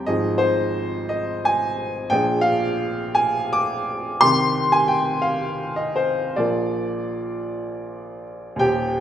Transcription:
0.06 G#1 F3 D#4 G#4 D#5
0.38 C5
1.09 D#5
1.45 G#5
2.10 A#1 F3 D4 G#4 G5
2.41 F5
3.15 G#5
3.53 D6
4.21 C2 D#3 C4 G4 C6
4.72 G#5
4.88 G5
5.22 F5
5.76 D#5
5.96 C5
6.36 A#1 F3 F4 A#4 D5
8.56 D#2 G4 G5
8.60 D#1

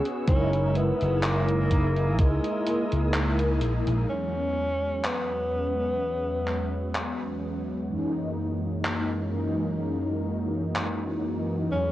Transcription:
Already playing: B3 C#4 F#4 G#4 F#5 C#6 E6
0.06 closed hi-hat
0.26 F#1 G#3 C#4 D#4 E4 A#4 G#5 D#6, kick, closed hi-hat
0.53 closed hi-hat
0.75 B3, closed hi-hat
1.01 F#1, closed hi-hat
1.23 A#3, clap, closed hi-hat
1.49 closed hi-hat
1.70 G#3 A#3 D#4 E4, kick, closed hi-hat
1.96 closed hi-hat
2.18 C#2 G#3, kick, closed hi-hat
2.44 closed hi-hat
2.66 closed hi-hat
2.92 C#2, closed hi-hat
3.14 clap, closed hi-hat
3.39 closed hi-hat
3.61 A#1, closed hi-hat
3.87 A#1, closed hi-hat
4.07 E2 F#3 G#3 B3 C#4 F#4 C#5 E5
5.05 B3, clap
5.51 E2 F#3 G#3 B3 C#4
6.48 clap
6.95 clap
7.89 F#2 E3 G#3 A#3 C#4 D#4 A#4
8.85 clap
9.32 F#2 E3 G#3 A#3 C#4 D#4
10.76 clap
11.70 E2 F#3 G#3 B3 C#4

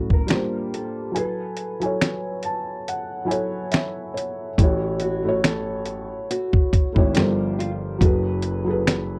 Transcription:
Already playing: A2 F#3 C#4 A4
0.10 A#4, kick
0.27 G3 D4 F4 G4, finger snap, snare, closed hi-hat
0.32 A#3 C5
0.74 A4, closed hi-hat
1.12 F#3 E4 G#5
1.16 A4 B4, closed hi-hat
1.57 closed hi-hat
1.80 F#3 E4 G#5, closed hi-hat
1.84 A4 C#5
2.01 finger snap, snare, closed hi-hat
2.43 A5, closed hi-hat
2.88 F#5, closed hi-hat
3.25 F#3 E4 F#4 G#5
3.29 A4 C#5, closed hi-hat
3.71 E5, finger snap, snare, closed hi-hat
4.14 C#5, closed hi-hat
4.58 A1 A3 E4, kick, closed hi-hat
4.62 F#4 C#5
5.00 F#4, closed hi-hat
5.23 A3 E4 F#4
5.28 C#5
5.44 A4, finger snap, snare, closed hi-hat
5.86 closed hi-hat
6.31 F#4, closed hi-hat
6.53 kick
6.73 kick, closed hi-hat
6.93 A3 E4, kick
6.97 G#1 E4 F#4 C#5
7.13 G1 F3 G3 A4, finger snap, snare, closed hi-hat
7.18 A#4 C5
7.59 F4, closed hi-hat
7.99 F#1 F#3 E4 F#4 G#4, kick, closed hi-hat
8.03 A4 B4
8.42 closed hi-hat
8.64 F#3 E4 G#4
8.69 A4 B4
8.87 finger snap, snare, closed hi-hat

